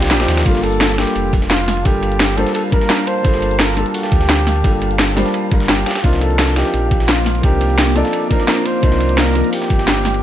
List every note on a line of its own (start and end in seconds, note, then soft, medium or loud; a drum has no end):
0.00 0.13 C2 medium
0.00 0.19 F3 loud
0.00 0.42 A#3 medium
0.00 0.19 C4 medium
0.00 0.20 D4 medium
0.00 0.21 D#4 medium
0.00 0.48 A#4 medium
0.00 0.18 C5 medium
0.00 0.47 D5 loud
0.00 0.42 F5 medium
0.00 0.42 C6 medium
0.00 0.42 D6 medium
0.00 snare loud
0.00 ride medium
0.11 0.27 A#1 medium
0.11 0.47 G4 loud
0.11 snare loud
0.11 closed hi-hat medium
0.11 ride medium
0.19 0.43 F3 medium
0.19 0.43 C4 medium
0.19 0.44 D4 medium
0.19 0.44 D#4 medium
0.19 0.44 C5 medium
0.19 snare loud
0.19 ride medium
0.28 0.44 D#2 medium
0.28 snare loud
0.28 open hi-hat medium
0.28 ride medium
0.37 snare loud
0.37 closed hi-hat soft
0.37 ride medium
0.44 1.06 G1 loud
0.44 0.95 G3 medium
0.44 0.96 A#3 medium
0.44 0.96 D4 medium
0.44 0.65 F4 medium
0.44 0.97 F4 medium
0.44 8.62 F5 medium
0.44 5.83 A5 medium
0.44 kick loud
0.44 closed hi-hat medium
0.44 crash loud
0.44 ride medium
0.49 0.97 A4 loud
0.55 snare medium
0.63 1.00 A4 loud
0.63 closed hi-hat medium
0.63 ride medium
0.72 closed hi-hat soft
0.81 snare loud
0.81 closed hi-hat loud
0.81 ride medium
0.90 snare medium
0.97 1.08 G3 medium
0.97 1.08 A#3 medium
0.97 1.09 D4 medium
0.97 1.09 F4 medium
0.97 1.35 G4 loud
0.97 1.09 A4 medium
0.97 snare loud
0.97 closed hi-hat medium
0.97 ride medium
1.07 snare soft
1.07 closed hi-hat soft
1.16 1.84 F1 medium
1.16 closed hi-hat loud
1.16 ride medium
1.33 kick loud
1.33 closed hi-hat medium
1.33 ride medium
1.42 snare medium
1.50 1.87 F4 loud
1.50 snare loud
1.50 closed hi-hat loud
1.50 ride medium
1.68 snare soft
1.68 open hi-hat medium
1.68 ride medium
1.77 ride soft
1.83 2.45 G1 loud
1.83 2.34 G3 medium
1.83 2.35 A#3 medium
1.83 2.36 D4 medium
1.83 2.36 F4 medium
1.83 2.39 G4 loud
1.83 kick loud
1.83 closed hi-hat medium
1.83 ride medium
1.88 2.37 A4 medium
2.03 closed hi-hat medium
2.03 ride medium
2.12 closed hi-hat soft
2.20 snare loud
2.20 closed hi-hat medium
2.20 ride medium
2.36 2.68 G3 loud
2.36 2.70 A#3 medium
2.36 2.71 D4 medium
2.36 2.71 F4 medium
2.36 2.54 A4 loud
2.36 2.71 C5 loud
2.36 closed hi-hat medium
2.36 ride medium
2.46 snare soft
2.46 closed hi-hat soft
2.55 2.62 A4 loud
2.55 closed hi-hat medium
2.55 ride medium
2.70 3.21 G3 medium
2.70 3.22 A#3 medium
2.70 3.23 D4 medium
2.70 3.23 F4 medium
2.70 3.09 A#4 loud
2.70 kick loud
2.70 closed hi-hat medium
2.70 ride medium
2.75 3.24 A#4 medium
2.81 snare soft
2.90 snare loud
2.90 closed hi-hat medium
2.90 ride medium
3.07 3.61 C5 loud
3.07 open hi-hat medium
3.07 ride medium
3.22 3.85 G1 loud
3.22 3.74 G3 medium
3.22 3.74 A#3 medium
3.22 3.75 D4 medium
3.22 3.76 F4 medium
3.22 kick loud
3.22 closed hi-hat medium
3.22 ride medium
3.27 3.76 A4 loud
3.34 snare medium
3.42 closed hi-hat medium
3.42 ride medium
3.51 closed hi-hat soft
3.59 3.76 A#4 loud
3.59 snare loud
3.59 closed hi-hat medium
3.59 ride medium
3.69 snare medium
3.76 3.87 G3 medium
3.76 3.87 A#3 medium
3.76 3.88 D4 medium
3.76 3.88 F4 medium
3.76 3.93 A4 loud
3.76 3.88 A4 medium
3.76 closed hi-hat medium
3.76 ride medium
3.86 closed hi-hat soft
3.94 5.30 G4 loud
3.94 closed hi-hat medium
3.94 open hi-hat medium
4.03 snare medium
4.12 4.63 D2 medium
4.12 kick loud
4.12 closed hi-hat medium
4.12 ride medium
4.21 snare medium
4.29 snare loud
4.29 closed hi-hat medium
4.29 ride medium
4.47 snare soft
4.47 open hi-hat medium
4.47 ride medium
4.56 ride soft
4.62 5.24 G1 loud
4.62 5.13 G3 medium
4.62 5.14 A#3 medium
4.62 5.15 D4 medium
4.62 5.15 F4 medium
4.62 kick loud
4.62 closed hi-hat medium
4.62 ride medium
4.67 5.16 A4 medium
4.82 closed hi-hat medium
4.82 ride medium
4.91 closed hi-hat soft
4.99 snare loud
4.99 closed hi-hat medium
4.99 ride medium
5.16 5.49 G3 loud
5.16 5.50 A#3 medium
5.16 5.50 D4 medium
5.16 5.50 F4 medium
5.16 5.51 C5 loud
5.16 snare medium
5.16 closed hi-hat medium
5.16 ride medium
5.26 snare soft
5.26 closed hi-hat soft
5.34 closed hi-hat medium
5.34 ride medium
5.51 5.85 G1 medium
5.51 5.85 G3 medium
5.51 5.85 A#3 medium
5.51 5.86 D4 medium
5.51 5.86 F4 medium
5.51 5.86 A#4 loud
5.51 kick loud
5.51 closed hi-hat medium
5.51 ride medium
5.60 snare soft
5.69 6.01 G4 medium
5.69 snare loud
5.69 closed hi-hat medium
5.69 ride medium
5.86 10.23 A#3 medium
5.86 10.23 D6 medium
5.86 snare medium
5.86 open hi-hat medium
5.86 ride medium
5.91 snare medium
5.91 ride medium
5.95 snare loud
5.95 ride medium
6.02 6.64 C2 loud
6.02 6.53 F3 medium
6.02 6.54 C4 medium
6.02 6.54 D4 medium
6.02 6.55 D#4 medium
6.02 6.22 F4 medium
6.02 kick loud
6.02 closed hi-hat medium
6.02 ride medium
6.07 6.56 A#3 loud
6.13 snare soft
6.21 6.56 A4 loud
6.21 closed hi-hat medium
6.21 ride medium
6.30 closed hi-hat soft
6.39 snare loud
6.39 closed hi-hat medium
6.39 ride medium
6.48 snare medium
6.55 6.66 F3 medium
6.55 6.67 C4 medium
6.55 6.67 D4 medium
6.55 6.67 D#4 medium
6.55 7.10 G4 loud
6.55 6.68 A#4 medium
6.55 snare loud
6.55 closed hi-hat medium
6.55 ride medium
6.65 snare medium
6.65 closed hi-hat soft
6.74 7.42 A#1 medium
6.74 closed hi-hat medium
6.74 ride medium
6.91 kick loud
6.91 closed hi-hat medium
6.91 ride medium
7.00 snare medium
7.09 7.43 F4 medium
7.09 snare loud
7.09 closed hi-hat medium
7.09 ride medium
7.26 snare soft
7.26 open hi-hat medium
7.26 ride medium
7.35 ride soft
7.41 8.03 C2 loud
7.41 7.93 F3 medium
7.41 7.93 C4 medium
7.41 7.94 D4 medium
7.41 7.95 D#4 medium
7.41 7.97 G4 loud
7.41 kick loud
7.41 closed hi-hat medium
7.41 ride medium
7.46 7.95 A#4 medium
7.61 closed hi-hat medium
7.61 ride medium
7.70 closed hi-hat soft
7.78 snare loud
7.78 closed hi-hat loud
7.78 ride medium
7.95 8.27 F3 loud
7.95 8.28 C4 medium
7.95 8.29 D4 medium
7.95 8.29 D#4 medium
7.95 8.30 A4 loud
7.95 8.30 D5 loud
7.95 closed hi-hat medium
7.95 ride medium
8.05 snare soft
8.05 closed hi-hat soft
8.13 closed hi-hat medium
8.13 ride medium
8.28 8.79 F3 medium
8.28 8.80 C4 medium
8.28 8.81 D4 medium
8.28 8.82 D#4 medium
8.28 8.67 A#4 loud
8.28 kick loud
8.28 closed hi-hat medium
8.28 ride medium
8.33 8.82 C5 loud
8.40 snare soft
8.48 snare loud
8.48 closed hi-hat medium
8.48 ride medium
8.65 9.20 C5 loud
8.65 10.23 G5 medium
8.65 open hi-hat medium
8.65 ride medium
8.80 9.43 C2 loud
8.80 9.32 F3 medium
8.80 9.33 C4 medium
8.80 9.33 D4 medium
8.80 9.34 D#4 medium
8.80 kick loud
8.80 closed hi-hat medium
8.80 ride medium
8.85 9.34 A#4 loud
8.92 snare medium
9.00 closed hi-hat medium
9.00 ride medium
9.09 closed hi-hat soft
9.18 9.52 A#4 loud
9.18 snare loud
9.18 closed hi-hat loud
9.18 ride medium
9.27 snare medium
9.34 9.45 F3 medium
9.34 9.46 C4 medium
9.34 9.46 D4 medium
9.34 9.46 D#4 medium
9.34 9.47 A#4 medium
9.34 closed hi-hat medium
9.34 ride medium
9.44 closed hi-hat soft
9.53 10.23 G4 loud
9.53 closed hi-hat loud
9.53 open hi-hat medium
9.62 snare soft
9.70 10.21 G1 medium
9.70 kick loud
9.70 closed hi-hat medium
9.70 ride medium
9.79 snare medium
9.88 snare loud
9.88 closed hi-hat loud
9.88 ride medium
10.05 snare soft
10.05 open hi-hat medium
10.05 ride medium
10.14 ride soft